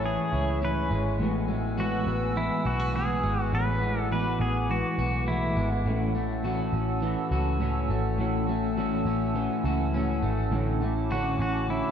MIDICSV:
0, 0, Header, 1, 7, 480
1, 0, Start_track
1, 0, Tempo, 582524
1, 986, Time_signature, 4, 2, 24, 8
1, 9815, End_track
2, 0, Start_track
2, 0, Title_t, "Ambient pad"
2, 0, Program_c, 0, 92
2, 0, Note_on_c, 0, 73, 78
2, 0, Note_on_c, 0, 76, 73
2, 0, Note_on_c, 0, 80, 69
2, 0, Note_on_c, 0, 85, 81
2, 954, Note_off_c, 0, 73, 0
2, 956, Note_off_c, 0, 76, 0
2, 957, Note_off_c, 0, 85, 0
2, 983, Note_on_c, 0, 78, 72
2, 985, Note_on_c, 0, 71, 82
2, 985, Note_on_c, 0, 88, 83
2, 2887, Note_off_c, 0, 88, 0
2, 2904, Note_on_c, 0, 86, 79
2, 4793, Note_off_c, 0, 71, 0
2, 4795, Note_off_c, 0, 80, 0
2, 4806, Note_off_c, 0, 86, 0
2, 4822, Note_on_c, 0, 81, 73
2, 4825, Note_on_c, 0, 88, 91
2, 4828, Note_on_c, 0, 61, 75
2, 8631, Note_off_c, 0, 81, 0
2, 8633, Note_off_c, 0, 88, 0
2, 8675, Note_on_c, 0, 86, 81
2, 8676, Note_on_c, 0, 81, 77
2, 9815, Note_off_c, 0, 61, 0
2, 9815, Note_off_c, 0, 78, 0
2, 9815, Note_off_c, 0, 81, 0
2, 9815, Note_off_c, 0, 86, 0
2, 9815, End_track
3, 0, Start_track
3, 0, Title_t, "Vibraphone"
3, 0, Program_c, 1, 11
3, 2913, Note_on_c, 1, 78, 55
3, 3611, Note_off_c, 1, 78, 0
3, 7473, Note_on_c, 1, 76, 50
3, 8171, Note_off_c, 1, 76, 0
3, 9815, End_track
4, 0, Start_track
4, 0, Title_t, "Pedal steel guitar"
4, 0, Program_c, 2, 26
4, 46, Note_on_c, 2, 68, 85
4, 483, Note_off_c, 2, 68, 0
4, 532, Note_on_c, 2, 71, 82
4, 855, Note_off_c, 2, 71, 0
4, 1483, Note_on_c, 2, 66, 59
4, 1954, Note_on_c, 2, 64, 79
4, 1969, Note_off_c, 2, 66, 0
4, 2196, Note_on_c, 2, 66, 79
4, 2197, Note_off_c, 2, 64, 0
4, 2434, Note_off_c, 2, 66, 0
4, 2437, Note_on_c, 2, 68, 81
4, 2816, Note_off_c, 2, 68, 0
4, 2816, Note_on_c, 2, 66, 81
4, 2923, Note_on_c, 2, 71, 98
4, 2926, Note_off_c, 2, 66, 0
4, 3302, Note_off_c, 2, 71, 0
4, 3302, Note_on_c, 2, 69, 98
4, 3388, Note_off_c, 2, 69, 0
4, 3398, Note_on_c, 2, 71, 72
4, 3616, Note_off_c, 2, 71, 0
4, 3637, Note_on_c, 2, 68, 79
4, 3879, Note_off_c, 2, 68, 0
4, 3879, Note_on_c, 2, 66, 78
4, 4320, Note_off_c, 2, 66, 0
4, 4349, Note_on_c, 2, 64, 66
4, 4683, Note_off_c, 2, 64, 0
4, 9161, Note_on_c, 2, 66, 65
4, 9398, Note_off_c, 2, 66, 0
4, 9408, Note_on_c, 2, 66, 73
4, 9642, Note_on_c, 2, 64, 77
4, 9644, Note_off_c, 2, 66, 0
4, 9815, Note_off_c, 2, 64, 0
4, 9815, End_track
5, 0, Start_track
5, 0, Title_t, "Clean electric guitar"
5, 0, Program_c, 3, 27
5, 19, Note_on_c, 3, 52, 46
5, 37, Note_on_c, 3, 56, 47
5, 47, Note_on_c, 3, 61, 52
5, 62, Note_on_c, 3, 64, 56
5, 252, Note_off_c, 3, 64, 0
5, 262, Note_on_c, 3, 64, 54
5, 263, Note_off_c, 3, 52, 0
5, 272, Note_off_c, 3, 56, 0
5, 275, Note_off_c, 3, 61, 0
5, 285, Note_on_c, 3, 61, 46
5, 304, Note_on_c, 3, 56, 41
5, 503, Note_on_c, 3, 45, 64
5, 504, Note_off_c, 3, 64, 0
5, 511, Note_off_c, 3, 56, 0
5, 513, Note_on_c, 3, 52, 67
5, 516, Note_off_c, 3, 61, 0
5, 521, Note_on_c, 3, 56, 65
5, 527, Note_on_c, 3, 61, 68
5, 532, Note_on_c, 3, 64, 81
5, 730, Note_off_c, 3, 64, 0
5, 740, Note_on_c, 3, 64, 44
5, 745, Note_off_c, 3, 45, 0
5, 750, Note_off_c, 3, 52, 0
5, 753, Note_off_c, 3, 61, 0
5, 754, Note_off_c, 3, 56, 0
5, 763, Note_on_c, 3, 61, 44
5, 784, Note_on_c, 3, 56, 42
5, 983, Note_off_c, 3, 64, 0
5, 983, Note_on_c, 3, 45, 72
5, 989, Note_off_c, 3, 56, 0
5, 990, Note_on_c, 3, 52, 77
5, 995, Note_off_c, 3, 61, 0
5, 999, Note_on_c, 3, 56, 88
5, 1007, Note_on_c, 3, 59, 92
5, 1011, Note_on_c, 3, 66, 92
5, 1210, Note_off_c, 3, 66, 0
5, 1220, Note_on_c, 3, 66, 55
5, 1225, Note_off_c, 3, 45, 0
5, 1228, Note_off_c, 3, 52, 0
5, 1233, Note_off_c, 3, 56, 0
5, 1235, Note_off_c, 3, 59, 0
5, 1245, Note_on_c, 3, 59, 52
5, 1264, Note_on_c, 3, 56, 49
5, 1461, Note_on_c, 3, 45, 70
5, 1463, Note_off_c, 3, 66, 0
5, 1466, Note_off_c, 3, 56, 0
5, 1469, Note_on_c, 3, 52, 82
5, 1473, Note_off_c, 3, 59, 0
5, 1476, Note_on_c, 3, 56, 68
5, 1483, Note_on_c, 3, 59, 88
5, 1489, Note_on_c, 3, 66, 78
5, 1692, Note_off_c, 3, 66, 0
5, 1702, Note_on_c, 3, 66, 47
5, 1704, Note_off_c, 3, 45, 0
5, 1708, Note_off_c, 3, 52, 0
5, 1711, Note_off_c, 3, 56, 0
5, 1715, Note_off_c, 3, 59, 0
5, 1726, Note_on_c, 3, 59, 46
5, 1744, Note_on_c, 3, 56, 41
5, 1941, Note_on_c, 3, 52, 49
5, 1944, Note_off_c, 3, 66, 0
5, 1948, Note_off_c, 3, 56, 0
5, 1956, Note_off_c, 3, 59, 0
5, 1958, Note_on_c, 3, 56, 53
5, 1970, Note_on_c, 3, 59, 57
5, 1984, Note_on_c, 3, 66, 52
5, 2166, Note_off_c, 3, 66, 0
5, 2176, Note_on_c, 3, 66, 53
5, 2184, Note_off_c, 3, 52, 0
5, 2189, Note_off_c, 3, 59, 0
5, 2192, Note_off_c, 3, 56, 0
5, 2199, Note_on_c, 3, 59, 43
5, 2218, Note_on_c, 3, 56, 38
5, 2415, Note_on_c, 3, 45, 62
5, 2421, Note_off_c, 3, 66, 0
5, 2422, Note_off_c, 3, 56, 0
5, 2425, Note_on_c, 3, 52, 61
5, 2429, Note_off_c, 3, 59, 0
5, 2432, Note_on_c, 3, 56, 66
5, 2439, Note_on_c, 3, 59, 59
5, 2447, Note_on_c, 3, 66, 71
5, 2645, Note_off_c, 3, 66, 0
5, 2655, Note_on_c, 3, 66, 47
5, 2661, Note_off_c, 3, 45, 0
5, 2666, Note_off_c, 3, 52, 0
5, 2669, Note_off_c, 3, 56, 0
5, 2669, Note_off_c, 3, 59, 0
5, 2678, Note_on_c, 3, 59, 37
5, 2901, Note_off_c, 3, 66, 0
5, 2901, Note_on_c, 3, 45, 72
5, 2909, Note_on_c, 3, 52, 63
5, 2913, Note_off_c, 3, 59, 0
5, 2917, Note_on_c, 3, 56, 69
5, 2925, Note_on_c, 3, 59, 82
5, 2933, Note_on_c, 3, 66, 73
5, 3122, Note_off_c, 3, 66, 0
5, 3132, Note_on_c, 3, 66, 50
5, 3144, Note_off_c, 3, 45, 0
5, 3147, Note_off_c, 3, 59, 0
5, 3148, Note_off_c, 3, 52, 0
5, 3152, Note_off_c, 3, 56, 0
5, 3157, Note_on_c, 3, 59, 42
5, 3176, Note_on_c, 3, 56, 39
5, 3379, Note_off_c, 3, 66, 0
5, 3380, Note_on_c, 3, 45, 72
5, 3387, Note_off_c, 3, 56, 0
5, 3389, Note_on_c, 3, 52, 71
5, 3392, Note_off_c, 3, 59, 0
5, 3397, Note_on_c, 3, 56, 75
5, 3405, Note_on_c, 3, 59, 85
5, 3411, Note_on_c, 3, 66, 79
5, 3606, Note_off_c, 3, 66, 0
5, 3615, Note_on_c, 3, 66, 50
5, 3623, Note_off_c, 3, 45, 0
5, 3628, Note_off_c, 3, 52, 0
5, 3628, Note_off_c, 3, 59, 0
5, 3632, Note_off_c, 3, 56, 0
5, 3638, Note_on_c, 3, 59, 45
5, 3658, Note_on_c, 3, 56, 46
5, 3857, Note_on_c, 3, 52, 49
5, 3861, Note_off_c, 3, 66, 0
5, 3864, Note_off_c, 3, 56, 0
5, 3872, Note_off_c, 3, 59, 0
5, 3874, Note_on_c, 3, 56, 57
5, 3887, Note_on_c, 3, 59, 51
5, 3899, Note_on_c, 3, 66, 51
5, 4084, Note_off_c, 3, 66, 0
5, 4094, Note_on_c, 3, 66, 55
5, 4102, Note_off_c, 3, 52, 0
5, 4109, Note_off_c, 3, 59, 0
5, 4110, Note_off_c, 3, 56, 0
5, 4119, Note_on_c, 3, 59, 46
5, 4139, Note_on_c, 3, 56, 38
5, 4340, Note_off_c, 3, 66, 0
5, 4342, Note_on_c, 3, 45, 64
5, 4351, Note_off_c, 3, 56, 0
5, 4353, Note_off_c, 3, 59, 0
5, 4353, Note_on_c, 3, 52, 62
5, 4361, Note_on_c, 3, 56, 69
5, 4368, Note_on_c, 3, 59, 62
5, 4374, Note_on_c, 3, 66, 65
5, 4569, Note_off_c, 3, 66, 0
5, 4579, Note_on_c, 3, 66, 47
5, 4584, Note_off_c, 3, 45, 0
5, 4590, Note_off_c, 3, 52, 0
5, 4594, Note_off_c, 3, 56, 0
5, 4594, Note_off_c, 3, 59, 0
5, 4604, Note_on_c, 3, 59, 40
5, 4624, Note_on_c, 3, 56, 34
5, 4819, Note_on_c, 3, 45, 78
5, 4823, Note_off_c, 3, 66, 0
5, 4828, Note_on_c, 3, 52, 76
5, 4833, Note_off_c, 3, 56, 0
5, 4835, Note_off_c, 3, 59, 0
5, 4836, Note_on_c, 3, 57, 75
5, 4843, Note_on_c, 3, 61, 88
5, 4850, Note_on_c, 3, 66, 77
5, 5048, Note_off_c, 3, 66, 0
5, 5058, Note_on_c, 3, 66, 51
5, 5063, Note_off_c, 3, 45, 0
5, 5067, Note_off_c, 3, 52, 0
5, 5071, Note_off_c, 3, 57, 0
5, 5073, Note_off_c, 3, 61, 0
5, 5082, Note_on_c, 3, 61, 52
5, 5099, Note_on_c, 3, 57, 44
5, 5299, Note_on_c, 3, 45, 83
5, 5302, Note_off_c, 3, 66, 0
5, 5306, Note_off_c, 3, 57, 0
5, 5308, Note_on_c, 3, 52, 83
5, 5315, Note_off_c, 3, 61, 0
5, 5316, Note_on_c, 3, 57, 80
5, 5324, Note_on_c, 3, 61, 78
5, 5331, Note_on_c, 3, 66, 88
5, 5523, Note_off_c, 3, 66, 0
5, 5533, Note_on_c, 3, 66, 64
5, 5543, Note_off_c, 3, 45, 0
5, 5547, Note_off_c, 3, 52, 0
5, 5547, Note_off_c, 3, 61, 0
5, 5551, Note_off_c, 3, 57, 0
5, 5556, Note_on_c, 3, 61, 55
5, 5575, Note_on_c, 3, 57, 52
5, 5768, Note_on_c, 3, 52, 60
5, 5776, Note_off_c, 3, 57, 0
5, 5780, Note_off_c, 3, 66, 0
5, 5786, Note_on_c, 3, 57, 63
5, 5788, Note_off_c, 3, 61, 0
5, 5798, Note_on_c, 3, 61, 54
5, 5812, Note_on_c, 3, 66, 67
5, 6001, Note_off_c, 3, 66, 0
5, 6011, Note_on_c, 3, 66, 57
5, 6017, Note_off_c, 3, 52, 0
5, 6026, Note_off_c, 3, 57, 0
5, 6027, Note_off_c, 3, 61, 0
5, 6037, Note_on_c, 3, 61, 51
5, 6055, Note_on_c, 3, 57, 44
5, 6255, Note_on_c, 3, 45, 74
5, 6259, Note_off_c, 3, 66, 0
5, 6261, Note_off_c, 3, 57, 0
5, 6262, Note_on_c, 3, 52, 84
5, 6266, Note_off_c, 3, 61, 0
5, 6271, Note_on_c, 3, 57, 82
5, 6276, Note_on_c, 3, 61, 80
5, 6284, Note_on_c, 3, 66, 86
5, 6485, Note_off_c, 3, 66, 0
5, 6495, Note_on_c, 3, 66, 51
5, 6501, Note_off_c, 3, 45, 0
5, 6504, Note_off_c, 3, 52, 0
5, 6509, Note_off_c, 3, 57, 0
5, 6511, Note_off_c, 3, 61, 0
5, 6520, Note_on_c, 3, 61, 47
5, 6539, Note_on_c, 3, 57, 39
5, 6731, Note_on_c, 3, 45, 75
5, 6740, Note_off_c, 3, 57, 0
5, 6740, Note_on_c, 3, 52, 82
5, 6741, Note_off_c, 3, 66, 0
5, 6747, Note_off_c, 3, 61, 0
5, 6750, Note_on_c, 3, 57, 84
5, 6757, Note_on_c, 3, 61, 77
5, 6762, Note_on_c, 3, 66, 99
5, 6965, Note_off_c, 3, 66, 0
5, 6975, Note_on_c, 3, 66, 53
5, 6979, Note_off_c, 3, 45, 0
5, 6983, Note_off_c, 3, 52, 0
5, 6989, Note_off_c, 3, 57, 0
5, 6989, Note_off_c, 3, 61, 0
5, 6999, Note_on_c, 3, 61, 54
5, 7017, Note_on_c, 3, 57, 44
5, 7219, Note_on_c, 3, 45, 87
5, 7221, Note_off_c, 3, 66, 0
5, 7229, Note_off_c, 3, 57, 0
5, 7229, Note_on_c, 3, 52, 78
5, 7233, Note_off_c, 3, 61, 0
5, 7239, Note_on_c, 3, 57, 86
5, 7243, Note_on_c, 3, 61, 88
5, 7251, Note_on_c, 3, 66, 94
5, 7447, Note_off_c, 3, 66, 0
5, 7457, Note_on_c, 3, 66, 53
5, 7463, Note_off_c, 3, 45, 0
5, 7468, Note_off_c, 3, 52, 0
5, 7473, Note_off_c, 3, 57, 0
5, 7473, Note_off_c, 3, 61, 0
5, 7483, Note_on_c, 3, 61, 47
5, 7696, Note_on_c, 3, 52, 56
5, 7702, Note_off_c, 3, 66, 0
5, 7713, Note_on_c, 3, 57, 62
5, 7715, Note_off_c, 3, 61, 0
5, 7728, Note_on_c, 3, 61, 65
5, 7740, Note_on_c, 3, 66, 60
5, 7930, Note_off_c, 3, 66, 0
5, 7940, Note_on_c, 3, 66, 55
5, 7941, Note_off_c, 3, 52, 0
5, 7950, Note_off_c, 3, 57, 0
5, 7953, Note_off_c, 3, 61, 0
5, 7962, Note_on_c, 3, 61, 54
5, 7983, Note_on_c, 3, 57, 53
5, 8183, Note_off_c, 3, 66, 0
5, 8183, Note_on_c, 3, 45, 83
5, 8191, Note_off_c, 3, 57, 0
5, 8195, Note_off_c, 3, 61, 0
5, 8195, Note_on_c, 3, 52, 73
5, 8201, Note_on_c, 3, 57, 75
5, 8207, Note_on_c, 3, 61, 81
5, 8215, Note_on_c, 3, 66, 89
5, 8409, Note_off_c, 3, 66, 0
5, 8419, Note_on_c, 3, 66, 53
5, 8425, Note_off_c, 3, 45, 0
5, 8431, Note_off_c, 3, 52, 0
5, 8433, Note_off_c, 3, 61, 0
5, 8434, Note_off_c, 3, 57, 0
5, 8443, Note_on_c, 3, 61, 51
5, 8463, Note_on_c, 3, 57, 50
5, 8663, Note_off_c, 3, 66, 0
5, 8663, Note_on_c, 3, 45, 86
5, 8669, Note_off_c, 3, 57, 0
5, 8670, Note_on_c, 3, 50, 92
5, 8675, Note_off_c, 3, 61, 0
5, 8679, Note_on_c, 3, 57, 83
5, 8686, Note_on_c, 3, 61, 85
5, 8692, Note_on_c, 3, 66, 86
5, 8889, Note_off_c, 3, 66, 0
5, 8899, Note_on_c, 3, 66, 55
5, 8905, Note_off_c, 3, 45, 0
5, 8908, Note_off_c, 3, 50, 0
5, 8913, Note_off_c, 3, 57, 0
5, 8916, Note_off_c, 3, 61, 0
5, 8925, Note_on_c, 3, 61, 49
5, 8944, Note_on_c, 3, 57, 48
5, 9143, Note_off_c, 3, 66, 0
5, 9146, Note_on_c, 3, 45, 78
5, 9154, Note_off_c, 3, 57, 0
5, 9156, Note_off_c, 3, 61, 0
5, 9157, Note_on_c, 3, 50, 77
5, 9163, Note_on_c, 3, 57, 85
5, 9171, Note_on_c, 3, 61, 84
5, 9178, Note_on_c, 3, 66, 84
5, 9370, Note_off_c, 3, 66, 0
5, 9380, Note_on_c, 3, 66, 52
5, 9386, Note_off_c, 3, 45, 0
5, 9392, Note_off_c, 3, 50, 0
5, 9395, Note_off_c, 3, 57, 0
5, 9395, Note_off_c, 3, 61, 0
5, 9405, Note_on_c, 3, 61, 45
5, 9423, Note_on_c, 3, 57, 43
5, 9620, Note_on_c, 3, 50, 49
5, 9623, Note_off_c, 3, 66, 0
5, 9629, Note_off_c, 3, 57, 0
5, 9636, Note_off_c, 3, 61, 0
5, 9639, Note_on_c, 3, 57, 60
5, 9651, Note_on_c, 3, 61, 61
5, 9664, Note_on_c, 3, 66, 54
5, 9815, Note_off_c, 3, 50, 0
5, 9815, Note_off_c, 3, 57, 0
5, 9815, Note_off_c, 3, 61, 0
5, 9815, Note_off_c, 3, 66, 0
5, 9815, End_track
6, 0, Start_track
6, 0, Title_t, "Clean electric guitar"
6, 0, Program_c, 4, 27
6, 0, Note_on_c, 4, 45, 66
6, 0, Note_on_c, 4, 56, 53
6, 0, Note_on_c, 4, 61, 55
6, 0, Note_on_c, 4, 64, 64
6, 264, Note_off_c, 4, 64, 0
6, 500, Note_off_c, 4, 61, 0
6, 745, Note_off_c, 4, 56, 0
6, 748, Note_on_c, 4, 56, 53
6, 974, Note_off_c, 4, 45, 0
6, 1220, Note_off_c, 4, 56, 0
6, 1223, Note_on_c, 4, 56, 54
6, 2185, Note_on_c, 4, 64, 61
6, 2303, Note_off_c, 4, 64, 0
6, 2303, Note_on_c, 4, 66, 48
6, 2654, Note_off_c, 4, 56, 0
6, 2663, Note_on_c, 4, 56, 53
6, 3136, Note_off_c, 4, 56, 0
6, 3381, Note_off_c, 4, 66, 0
6, 4586, Note_on_c, 4, 56, 57
6, 4874, Note_off_c, 4, 56, 0
6, 8426, Note_on_c, 4, 57, 52
6, 8910, Note_off_c, 4, 57, 0
6, 9815, End_track
7, 0, Start_track
7, 0, Title_t, "Picked electric bass"
7, 0, Program_c, 5, 34
7, 0, Note_on_c, 5, 33, 87
7, 131, Note_off_c, 5, 33, 0
7, 271, Note_on_c, 5, 37, 76
7, 725, Note_off_c, 5, 37, 0
7, 748, Note_on_c, 5, 32, 83
7, 975, Note_off_c, 5, 32, 0
7, 985, Note_on_c, 5, 33, 90
7, 1673, Note_off_c, 5, 33, 0
7, 1704, Note_on_c, 5, 33, 87
7, 2047, Note_off_c, 5, 33, 0
7, 2187, Note_on_c, 5, 35, 84
7, 2643, Note_off_c, 5, 35, 0
7, 2668, Note_on_c, 5, 32, 70
7, 2895, Note_off_c, 5, 32, 0
7, 2906, Note_on_c, 5, 33, 89
7, 3593, Note_off_c, 5, 33, 0
7, 3626, Note_on_c, 5, 33, 90
7, 3968, Note_off_c, 5, 33, 0
7, 4105, Note_on_c, 5, 35, 81
7, 4562, Note_off_c, 5, 35, 0
7, 4587, Note_on_c, 5, 32, 85
7, 4815, Note_off_c, 5, 32, 0
7, 4827, Note_on_c, 5, 33, 93
7, 5514, Note_off_c, 5, 33, 0
7, 5545, Note_on_c, 5, 33, 85
7, 5888, Note_off_c, 5, 33, 0
7, 6026, Note_on_c, 5, 37, 89
7, 6482, Note_off_c, 5, 37, 0
7, 6504, Note_on_c, 5, 32, 83
7, 6733, Note_off_c, 5, 32, 0
7, 6744, Note_on_c, 5, 33, 90
7, 7432, Note_off_c, 5, 33, 0
7, 7461, Note_on_c, 5, 33, 89
7, 7806, Note_off_c, 5, 33, 0
7, 7945, Note_on_c, 5, 37, 90
7, 8402, Note_off_c, 5, 37, 0
7, 8426, Note_on_c, 5, 32, 85
7, 8654, Note_off_c, 5, 32, 0
7, 8665, Note_on_c, 5, 33, 104
7, 9353, Note_off_c, 5, 33, 0
7, 9386, Note_on_c, 5, 33, 93
7, 9728, Note_off_c, 5, 33, 0
7, 9815, End_track
0, 0, End_of_file